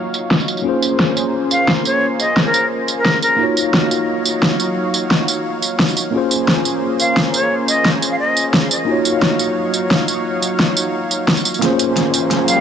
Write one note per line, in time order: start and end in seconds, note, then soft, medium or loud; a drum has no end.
0.00 0.63 F#3 medium
0.00 0.61 A#3 medium
0.00 0.63 D#4 medium
0.00 0.63 F4 medium
0.00 0.64 F#4 medium
0.00 0.63 C#5 medium
0.00 0.65 C#5 medium
0.00 0.63 F5 medium
0.14 tambourine medium
0.31 snare loud
0.40 tambourine soft
0.48 tambourine medium
0.57 tambourine soft
0.62 3.35 A#3 medium
0.62 3.37 A#3 medium
0.62 3.37 C#4 medium
0.62 3.38 F4 medium
0.62 3.37 G#4 medium
0.62 3.37 C5 medium
0.67 3.38 G#4 medium
0.67 3.39 C5 medium
0.82 tambourine medium
1.00 snare loud
1.17 tambourine medium
1.51 1.72 F5 medium
1.51 tambourine medium
1.68 snare loud
1.85 2.06 C#5 medium
1.85 tambourine medium
2.20 2.40 D#5 medium
2.20 tambourine medium
2.37 snare loud
2.46 2.66 A#4 medium
2.54 tambourine medium
2.88 tambourine medium
2.97 3.21 A#4 medium
3.05 snare loud
3.22 3.43 A#4 medium
3.22 tambourine medium
3.37 6.11 F#3 medium
3.37 6.10 A#3 medium
3.37 6.11 D#4 medium
3.37 6.12 F4 medium
3.37 6.11 C#5 medium
3.37 6.11 F5 medium
3.41 6.13 F#4 medium
3.41 6.14 C#5 medium
3.57 tambourine medium
3.74 snare loud
3.91 tambourine medium
4.25 tambourine medium
4.43 snare loud
4.60 tambourine medium
4.94 tambourine medium
5.11 snare loud
5.28 tambourine medium
5.62 tambourine medium
5.79 snare loud
5.89 tambourine soft
5.97 tambourine medium
6.11 8.84 A#3 medium
6.11 8.85 A#3 medium
6.11 8.86 C#4 medium
6.11 8.86 F4 medium
6.11 8.85 G#4 medium
6.11 8.85 C5 medium
6.16 8.87 G#4 medium
6.16 8.88 C5 medium
6.31 tambourine medium
6.48 snare loud
6.65 tambourine soft
7.00 7.20 F5 medium
7.00 tambourine medium
7.17 snare loud
7.34 7.55 C#5 medium
7.34 tambourine medium
7.68 7.89 D#5 medium
7.68 tambourine medium
7.85 snare loud
8.02 tambourine medium
8.11 8.18 F5 medium
8.19 8.46 D#5 medium
8.37 tambourine medium
8.54 snare loud
8.71 tambourine medium
8.85 11.59 F#3 medium
8.85 11.58 A#3 medium
8.85 11.60 D#4 medium
8.85 11.61 F4 medium
8.85 11.60 C#5 medium
8.85 11.60 F5 medium
8.90 11.61 F#4 medium
8.90 11.62 C#5 medium
9.05 tambourine medium
9.22 snare loud
9.39 tambourine medium
9.74 tambourine medium
9.91 snare loud
10.08 tambourine medium
10.42 tambourine medium
10.60 snare loud
10.77 tambourine medium
11.11 tambourine medium
11.28 snare loud
11.37 tambourine soft
11.45 tambourine medium
11.54 tambourine soft
11.59 12.53 A#3 medium
11.59 12.61 A#3 medium
11.59 12.54 C#4 medium
11.59 12.61 C#4 medium
11.59 12.55 F4 medium
11.59 12.61 G#4 medium
11.59 12.61 C5 medium
11.59 snare soft
11.59 closed hi-hat medium
11.59 riser medium
11.64 12.56 G#4 medium
11.64 12.57 C5 medium
11.79 closed hi-hat medium
11.79 tambourine medium
11.97 snare soft
11.97 closed hi-hat medium
12.14 closed hi-hat medium
12.14 tambourine medium
12.31 snare soft
12.31 closed hi-hat medium
12.48 12.61 F5 medium
12.48 closed hi-hat medium
12.48 tambourine medium